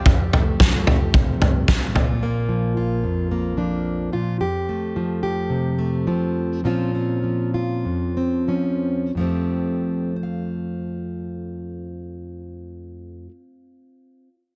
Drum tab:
SD |--o---o-|--------|--------|--------|
FT |oooooooo|--------|--------|--------|
BD |o-o-o-o-|--------|--------|--------|

SD |--------|--------|
FT |--------|--------|
BD |--------|--------|